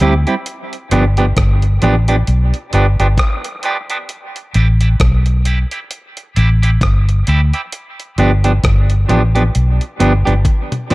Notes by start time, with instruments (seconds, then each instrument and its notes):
0.00 fingered electric bass D2, clean electric guitar G3 C4 E4 G4, closed hi-hat
0.27 clean electric guitar G3 C4 E4 G4, closed hi-hat
0.46 closed hi-hat
0.73 closed hi-hat
0.91 fingered electric bass G1, clean electric guitar F3 B3 D4 G4, closed hi-hat
1.17 clean electric guitar F3 B3 D4 G4, closed hi-hat
1.37 fingered electric bass G1, kick, cross-stick, closed hi-hat
1.62 closed hi-hat
1.82 fingered electric bass A1, clean electric guitar F3 B3 D4 G4, closed hi-hat
2.08 clean electric guitar F3 B3 D4 G4, closed hi-hat
2.27 fingered electric bass B1, closed hi-hat
2.54 closed hi-hat
2.73 fingered electric bass G1, clean electric guitar F3 B3 D4 G4, closed hi-hat
3.00 fingered electric bass G1, clean electric guitar F3 B3 D4 G4, closed hi-hat
3.18 kick, cross-stick, closed hi-hat
3.44 closed hi-hat
3.63 clean electric guitar F3 B3 D4 G4, closed hi-hat
3.90 clean electric guitar F3 B3 D4 G4, closed hi-hat
4.09 closed hi-hat
4.36 closed hi-hat
4.54 fingered electric bass A1, clean electric guitar G3 C4 E4 G4, closed hi-hat
4.81 clean electric guitar G3 C4 E4 G4, closed hi-hat
5.00 fingered electric bass B1, kick, cross-stick, closed hi-hat
5.26 closed hi-hat
5.45 clean electric guitar G3 C4 E4 G4, closed hi-hat
5.71 clean electric guitar G3 C4 E4 G4, closed hi-hat
5.91 closed hi-hat
6.17 closed hi-hat
6.36 fingered electric bass A1, clean electric guitar G3 C4 E4 G4, closed hi-hat
6.63 clean electric guitar G3 C4 E4 G4, closed hi-hat
6.81 fingered electric bass G1, kick, cross-stick, closed hi-hat
7.09 closed hi-hat
7.27 fingered electric bass D2, clean electric guitar G3 C4 E4 G4, closed hi-hat
7.54 clean electric guitar G3 C4 E4 G4, closed hi-hat
7.72 closed hi-hat
8.00 closed hi-hat
8.18 fingered electric bass G1, clean electric guitar F3 B3 D4 G4, closed hi-hat
8.44 clean electric guitar F3 B3 D4 G4, closed hi-hat
8.64 fingered electric bass G1, kick, cross-stick, closed hi-hat
8.90 closed hi-hat
9.09 fingered electric bass A1, clean electric guitar F3 B3 D4 G4, closed hi-hat
9.35 clean electric guitar F3 B3 D4 G4, closed hi-hat
9.55 fingered electric bass B1, closed hi-hat
9.81 closed hi-hat
10.00 fingered electric bass G1, clean electric guitar F3 B3 D4 G4, closed hi-hat
10.25 fingered electric bass G1, clean electric guitar F3 B3 D4 G4, closed hi-hat
10.45 kick, closed hi-hat, high tom
10.72 closed hi-hat, mid tom
10.90 clean electric guitar F3 B3, mid tom, open hi-hat